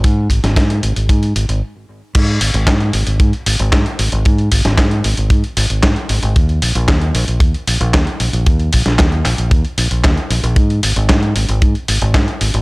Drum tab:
CC |----------------|x---------------|----------------|----------------|
HH |x-xxxxxxxxxx----|xxoxxxoxxxoxxxox|xxoxxxoxxxoxxxox|xxoxxxoxxxoxxxox|
CP |----------------|----x-------x---|----x-------x---|----x-------x---|
SD |---oo-----------|----o-------o---|---oo-------o---|----o-------o---|
BD |o-o-o---o-------|o---o---o---o---|o-o-o---o---o---|o---o---o---o---|

CC |----------------|----------------|
HH |xxoxxxoxxxoxxxox|xxoxxxoxxxoxxxox|
CP |----x-x-----x---|----x-------x---|
SD |---oo-------o---|----o-------o---|
BD |o-o-o---o---o---|o---o---o---o---|